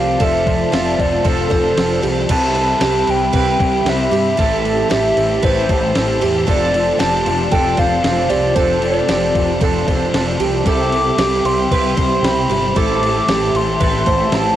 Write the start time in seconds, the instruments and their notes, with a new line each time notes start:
Already playing: fingered electric bass C2, distorted electric guitar F2 C3 F3 A3, clean electric guitar D3 C4 F4 A4, analog synth pad F4 C5 D5 A5, twelve-string acoustic guitar G4 C5, soft synth lead F5
0.19 fingered electric bass F1, distorted electric guitar F2 C3 F3, clean electric guitar D3 F3 C4 F4 A4, twelve-string acoustic guitar A4, kick, crash
0.24 soft synth lead E5
0.44 distorted electric guitar C3 F3, clean electric guitar C4 F4 A4, kick, crash
0.71 fingered electric bass F1, distorted electric guitar F2 C3 F3, clean electric guitar D3 C4 F4 A4, twelve-string acoustic guitar F4, snare, crash
0.98 fingered electric bass F1, clean electric guitar C4 F4 A4, soft synth lead D5, kick, crash
1.13 snare
1.23 fingered electric bass F1, clean electric guitar D3 F3 C4 F4 A4, twelve-string acoustic guitar A4, kick, crash
1.28 soft synth lead A4
1.49 fingered electric bass F1, distorted electric guitar C3 F3, clean electric guitar C4 F4 A4, twelve-string acoustic guitar C5, kick, crash
1.75 fingered electric bass F1, distorted electric guitar F2 C3 F3, clean electric guitar D3 C4 F4 A4, snare, crash
2.02 fingered electric bass C2, distorted electric guitar C3 F3, twelve-string acoustic guitar G4, crash
2.28 fingered electric bass C2, clean electric guitar C3 E3 G3 C4 E4 B4, distorted electric guitar C3 G3 C4, analog synth pad C4 G4 E5 B5, twelve-string acoustic guitar A4, soft synth lead A5, kick, crash
2.55 distorted electric guitar G3 C4, clean electric guitar G3 C4 E4 B4, crash
2.79 fingered electric bass C2, distorted electric guitar C3 G3 C4, clean electric guitar G3 C4 E4, twelve-string acoustic guitar G4, snare, crash
2.83 clean electric guitar B4
3.07 fingered electric bass C2, clean electric guitar G3 C4 E4 B4, soft synth lead G5, crash
3.33 fingered electric bass C2, clean electric guitar C3 E3 G3 C4 E4 B4, twelve-string acoustic guitar B4, soft synth lead G5, kick, crash
3.58 fingered electric bass C2, distorted electric guitar G3 C4, clean electric guitar G3 C4 E4 B4, kick, crash
3.85 fingered electric bass C2, distorted electric guitar C3 G3 C4, clean electric guitar G3 C4 E4, soft synth lead E5, snare, crash
3.89 clean electric guitar B4
4.11 fingered electric bass G2, distorted electric guitar G3 C4, twelve-string acoustic guitar G4, crash
4.37 fingered electric bass A1, distorted electric guitar A2 E3 A3, clean electric guitar A2 G3 C4 E4, twelve-string acoustic guitar A4, soft synth lead E5, analog synth pad A5, kick, crash
4.41 clean electric guitar A4
4.63 distorted electric guitar E3 A3, clean electric guitar E4 A4, crash
4.68 clean electric guitar C4
4.89 fingered electric bass A1, distorted electric guitar A2 E3 A3, clean electric guitar G3 C4, twelve-string acoustic guitar G4, soft synth lead E5, snare, crash
4.93 clean electric guitar E4 A4
5.17 fingered electric bass A1, clean electric guitar C4 E4 A4, crash
5.42 fingered electric bass A1, clean electric guitar A2 G3 C4 E4, twelve-string acoustic guitar B4, soft synth lead C5, kick, crash
5.47 clean electric guitar A4
5.68 fingered electric bass A1, distorted electric guitar E3 A3, clean electric guitar C4 E4 A4, twelve-string acoustic guitar C5, kick, crash
5.94 fingered electric bass A1, distorted electric guitar A2 E3 A3, clean electric guitar G3 C4 E4 A4, snare, crash
6.19 fingered electric bass E2, distorted electric guitar E3 A3, twelve-string acoustic guitar G4, crash
6.46 fingered electric bass F1, distorted electric guitar F2 C3 F3, clean electric guitar F3 C4 D4, analog synth pad F4 D5, twelve-string acoustic guitar A4, soft synth lead D5, kick, crash
6.50 clean electric guitar A4
6.71 distorted electric guitar C3 F3, clean electric guitar A4, crash
6.76 clean electric guitar C4 D4
6.98 fingered electric bass F1, distorted electric guitar F2 C3 F3, clean electric guitar F3 C4 D4, twelve-string acoustic guitar G4, soft synth lead A5, snare, crash
7.02 clean electric guitar A4
7.26 fingered electric bass F1, clean electric guitar C4 D4 A4, crash
7.51 fingered electric bass F1, clean electric guitar F3 C4 D4 A4, twelve-string acoustic guitar A4, soft synth lead G5, kick, crash
7.76 fingered electric bass F1, distorted electric guitar C3 F3, clean electric guitar D4 A4, twelve-string acoustic guitar C5, soft synth lead F5, kick, crash
7.80 clean electric guitar C4
8.02 fingered electric bass F1, distorted electric guitar F2 C3 F3, clean electric guitar F3 C4, snare, crash
8.06 clean electric guitar D4 A4
8.28 fingered electric bass C2, distorted electric guitar C3 F3, twelve-string acoustic guitar G4, soft synth lead D5, crash
8.54 fingered electric bass F1, distorted electric guitar F2 C3 F3, clean electric guitar F3 C4, twelve-string acoustic guitar A4, soft synth lead C5, kick, crash
8.58 clean electric guitar D4 A4
8.80 distorted electric guitar C3 F3, clean electric guitar D4 A4, soft synth lead D5, crash
8.85 clean electric guitar C4
9.07 fingered electric bass F1, distorted electric guitar F2 C3 F3, clean electric guitar F3 C4 D4 A4, twelve-string acoustic guitar G4, snare, crash
9.34 fingered electric bass F1, clean electric guitar C4 D4 A4, kick, crash
9.61 fingered electric bass F1, clean electric guitar F3 C4 D4 A4, twelve-string acoustic guitar A4, kick, crash
9.86 fingered electric bass F1, distorted electric guitar C3 F3, clean electric guitar C4 D4 A4, twelve-string acoustic guitar C5, kick, crash
10.11 fingered electric bass F1, distorted electric guitar F2 C3 F3, clean electric guitar F3 C4 D4, snare, crash
10.16 clean electric guitar A4
10.39 fingered electric bass C2, distorted electric guitar C3 F3, twelve-string acoustic guitar G4, crash
10.63 fingered electric bass C2, distorted electric guitar C3 G3 C4, clean electric guitar C3, analog synth pad G4 E5 G5, twelve-string acoustic guitar A4, soft synth lead D6, kick, crash
10.67 clean electric guitar G3 E4 G4
10.91 distorted electric guitar G3 C4, clean electric guitar E4 G4, crash
11.17 fingered electric bass C2, distorted electric guitar C3 G3 C4, clean electric guitar G3, twelve-string acoustic guitar G4, snare, crash
11.22 clean electric guitar E4 G4
11.45 fingered electric bass C2, clean electric guitar E4 G4, soft synth lead C6, crash
11.71 fingered electric bass C2, clean electric guitar C3 G3 E4 G4, twelve-string acoustic guitar B4, soft synth lead C6, kick, crash
11.96 fingered electric bass C2, distorted electric guitar G3 C4, clean electric guitar E4 G4, twelve-string acoustic guitar C5, kick, crash
12.21 fingered electric bass C2, distorted electric guitar C3 G3 C4, clean electric guitar G3, soft synth lead B5, snare, crash
12.27 clean electric guitar E4 G4
12.48 fingered electric bass G1, distorted electric guitar G3 C4, twelve-string acoustic guitar G4, crash
12.74 fingered electric bass A1, distorted electric guitar A2 E3 A3, clean electric guitar A2 G3 C4 E4 A4, analog synth pad G4 E5 A5, twelve-string acoustic guitar A4, soft synth lead D6, kick, crash
13.00 distorted electric guitar E3 A3, clean electric guitar E4 A4, crash
13.05 clean electric guitar C4
13.26 fingered electric bass A1, distorted electric guitar A2 E3 A3, clean electric guitar G3 C4, twelve-string acoustic guitar G4, snare, crash
13.30 clean electric guitar E4 A4
13.54 fingered electric bass A1, clean electric guitar C4 E4 A4, soft synth lead C6, crash
13.80 fingered electric bass A1, clean electric guitar A2 G3 C4 E4 A4, twelve-string acoustic guitar B4, soft synth lead C6, kick, crash
14.06 fingered electric bass A1, distorted electric guitar E3 A3, clean electric guitar E4 A4, twelve-string acoustic guitar C5, kick, crash
14.10 clean electric guitar C4
14.32 fingered electric bass A1, distorted electric guitar A2 E3 A3, clean electric guitar G3 C4 E4 A4, soft synth lead A5, snare, crash